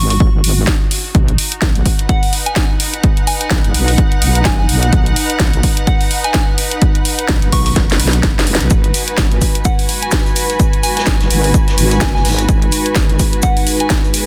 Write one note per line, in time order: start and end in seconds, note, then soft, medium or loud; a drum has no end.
0.00 0.19 G#1 medium
0.00 2.15 F#4 medium
0.10 0.17 C#6 medium
0.10 open hi-hat medium
0.20 0.42 G#1 loud
0.20 kick loud
0.44 0.66 G#1 medium
0.44 open hi-hat loud
0.67 kick loud
0.67 snare loud
0.91 open hi-hat loud
1.15 1.37 B1 medium
1.15 9.92 D#4 medium
1.15 kick loud
1.15 closed hi-hat medium
1.28 closed hi-hat soft
1.38 open hi-hat loud
1.52 closed hi-hat soft
1.62 1.84 B1 loud
1.62 kick loud
1.62 snare loud
1.62 closed hi-hat medium
1.73 9.31 F#5 medium
1.73 closed hi-hat soft
1.86 kick medium
1.86 open hi-hat loud
1.99 14.26 B4 medium
1.99 closed hi-hat soft
2.09 2.31 F#5 medium
2.09 kick loud
2.09 closed hi-hat medium
2.23 open hi-hat medium
2.33 open hi-hat loud
2.46 2.67 G#5 medium
2.46 closed hi-hat soft
2.56 kick loud
2.56 snare loud
2.56 closed hi-hat medium
2.80 open hi-hat loud
2.94 closed hi-hat soft
3.04 kick loud
3.04 closed hi-hat medium
3.17 closed hi-hat soft
3.27 3.36 G#5 medium
3.27 open hi-hat medium
3.41 3.47 G#5 medium
3.41 closed hi-hat soft
3.50 3.62 B1 medium
3.50 kick loud
3.50 snare loud
3.50 closed hi-hat medium
3.64 3.73 F#1 loud
3.64 closed hi-hat soft
3.74 3.97 B1 medium
3.74 open hi-hat loud
3.88 open hi-hat medium
3.98 kick loud
3.98 closed hi-hat medium
4.12 closed hi-hat soft
4.22 4.44 B1 loud
4.22 open hi-hat loud
4.35 closed hi-hat medium
4.45 4.67 F#1 medium
4.45 4.54 G#5 medium
4.45 kick loud
4.45 snare loud
4.45 closed hi-hat medium
4.59 4.65 G#5 medium
4.69 4.91 B1 loud
4.69 open hi-hat loud
4.83 closed hi-hat medium
4.93 5.15 B1 medium
4.93 kick loud
4.93 closed hi-hat medium
5.06 closed hi-hat soft
5.16 open hi-hat loud
5.30 closed hi-hat medium
5.40 5.62 B1 medium
5.40 kick loud
5.40 snare loud
5.40 closed hi-hat medium
5.53 closed hi-hat soft
5.63 kick medium
5.63 open hi-hat loud
5.77 closed hi-hat medium
5.87 6.09 F#5 medium
5.87 kick loud
5.87 closed hi-hat medium
6.01 open hi-hat medium
6.11 open hi-hat loud
6.24 6.45 G#5 medium
6.24 closed hi-hat medium
6.34 kick loud
6.34 snare loud
6.34 closed hi-hat medium
6.58 open hi-hat loud
6.71 closed hi-hat medium
6.82 kick loud
6.82 closed hi-hat medium
6.95 closed hi-hat soft
7.05 open hi-hat loud
7.19 closed hi-hat medium
7.28 7.40 B1 medium
7.28 kick loud
7.28 snare loud
7.28 closed hi-hat medium
7.42 7.51 F#1 loud
7.42 closed hi-hat soft
7.52 7.75 B1 medium
7.52 7.61 C#6 medium
7.52 kick medium
7.52 open hi-hat loud
7.66 7.73 C#6 medium
7.66 open hi-hat medium
7.76 7.98 F#1 loud
7.76 kick loud
7.76 snare medium
7.76 closed hi-hat medium
7.90 snare medium
7.90 closed hi-hat soft
8.00 8.22 B1 loud
8.00 open hi-hat loud
8.08 snare medium
8.13 closed hi-hat medium
8.23 8.58 F#1 loud
8.23 kick loud
8.23 snare medium
8.23 closed hi-hat medium
8.39 snare medium
8.47 open hi-hat loud
8.55 snare loud
8.61 8.69 B1 medium
8.61 closed hi-hat medium
8.70 8.93 G#1 medium
8.70 14.26 G#3 medium
8.70 14.26 D#4 medium
8.70 14.26 F#4 medium
8.70 12.45 F#4 medium
8.70 14.26 B4 medium
8.70 kick loud
8.70 closed hi-hat medium
8.70 shaker medium
8.84 closed hi-hat soft
8.94 14.26 G#5 medium
8.94 open hi-hat loud
8.94 shaker medium
9.08 closed hi-hat medium
9.18 9.40 G#1 medium
9.18 kick loud
9.18 snare loud
9.18 closed hi-hat medium
9.18 shaker medium
9.32 closed hi-hat soft
9.41 kick medium
9.41 open hi-hat loud
9.41 shaker medium
9.55 closed hi-hat medium
9.65 9.87 F#5 medium
9.65 kick loud
9.65 closed hi-hat medium
9.65 shaker medium
9.79 open hi-hat medium
9.89 open hi-hat loud
9.89 shaker medium
10.02 10.23 G#5 medium
10.02 closed hi-hat medium
10.11 kick loud
10.11 snare loud
10.11 closed hi-hat medium
10.11 shaker medium
10.26 closed hi-hat soft
10.36 open hi-hat loud
10.36 shaker medium
10.50 closed hi-hat medium
10.50 closed hi-hat soft
10.60 kick loud
10.60 closed hi-hat medium
10.60 shaker medium
10.73 closed hi-hat soft
10.83 10.92 G#5 medium
10.83 open hi-hat loud
10.83 shaker medium
10.97 11.03 G#5 medium
10.97 snare medium
10.97 closed hi-hat medium
11.06 11.18 G#1 loud
11.06 kick loud
11.06 snare loud
11.06 closed hi-hat medium
11.06 shaker medium
11.20 11.29 F#1 loud
11.20 snare soft
11.20 closed hi-hat soft
11.30 11.53 G#1 medium
11.30 open hi-hat loud
11.30 shaker medium
11.44 open hi-hat medium
11.54 kick loud
11.54 closed hi-hat medium
11.54 shaker medium
11.68 snare soft
11.68 closed hi-hat soft
11.78 12.00 G#1 loud
11.78 open hi-hat loud
11.78 shaker medium
11.91 closed hi-hat soft
11.91 closed hi-hat medium
12.01 12.23 F#1 medium
12.01 12.10 G#5 medium
12.01 kick loud
12.01 snare loud
12.01 closed hi-hat medium
12.01 shaker medium
12.15 12.21 G#5 medium
12.15 snare soft
12.25 12.47 G#1 medium
12.25 snare soft
12.25 open hi-hat loud
12.25 open hi-hat medium
12.39 closed hi-hat medium
12.39 closed hi-hat soft
12.48 12.71 G#1 loud
12.48 14.26 G#4 medium
12.48 kick loud
12.48 closed hi-hat medium
12.48 shaker medium
12.62 closed hi-hat soft
12.72 open hi-hat loud
12.72 shaker medium
12.86 closed hi-hat soft
12.95 13.18 G#1 medium
12.95 kick loud
12.95 snare loud
12.95 closed hi-hat medium
12.95 shaker medium
13.09 closed hi-hat soft
13.19 kick medium
13.19 open hi-hat loud
13.19 shaker medium
13.33 closed hi-hat medium
13.42 13.65 F#5 medium
13.42 kick loud
13.42 closed hi-hat medium
13.42 shaker loud
13.57 open hi-hat medium
13.67 open hi-hat loud
13.67 shaker medium
13.80 14.01 G#5 medium
13.80 closed hi-hat soft
13.90 kick loud
13.90 snare loud
13.90 closed hi-hat medium
13.90 shaker medium
14.04 closed hi-hat soft
14.14 open hi-hat loud
14.14 shaker medium